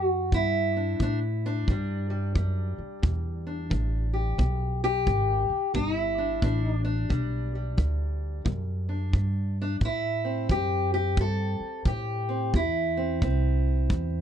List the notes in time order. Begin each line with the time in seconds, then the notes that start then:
Already playing: F#2 E3 G4
0.03 F#4
0.32 G2 B2 E4, kick
0.76 D4
0.99 A2 E3 D4, kick
1.46 D4
1.68 E2 G2 G3, kick
2.10 G3
2.35 F#2 E3 G3, kick
2.78 muted upright bass stroke
3.02 E2 B2, kick
3.47 D4
3.70 A1 E3, kick
4.14 G4
4.38 B1 E2, kick
4.84 G4
5.07 G#1 E3, kick
5.50 muted upright bass stroke
5.74 G1 B2 D#4, kick
5.95 E4
6.18 D4
6.42 A1 E3 D4, kick
6.63 D#4
6.76 D4
6.85 D4
7.09 B1 E2 G3, kick
7.55 G3
7.78 D2 E3, kick
8.45 F#2 B2, kick
8.89 D4
9.13 G2 E3, kick
9.62 D4
9.81 A2, kick
9.85 E4
10.25 C4
10.49 F#2 E3 G4, kick
10.94 G4
11.17 E2 G2 A4, kick
11.60 muted upright bass stroke
11.85 A2 E3 G4, kick
12.29 C4
12.54 E2 A2 E4, kick
12.97 C4
13.22 C2 E3 C4, kick
13.90 E2, kick